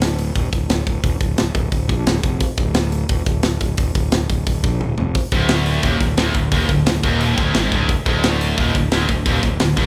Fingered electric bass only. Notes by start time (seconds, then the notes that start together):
Already playing: D1
0.35 D#1
0.53 D1
0.70 D1
0.87 D1
1.04 D#1
1.21 D1
1.39 D1
1.55 D1
1.72 D1
1.89 A#1
2.07 D1
2.23 F1
2.58 D1
3.09 D#1
3.26 D1
3.44 D1
3.61 D1
3.78 D#1
3.95 D1
4.13 D1
4.30 D1
4.47 D1
4.64 A#1
4.81 D1
4.98 F1
5.32 D1
5.83 D#1
6.00 D1
6.18 D1
6.35 D1
6.52 D#1
6.69 D1
6.87 D1
7.04 D#1
7.38 D1
7.55 G#1
7.72 D1
8.06 D1
8.58 D#1
8.75 D1
8.92 D1
9.09 D1
9.26 D#1
9.43 D1
9.60 D1
9.77 D#1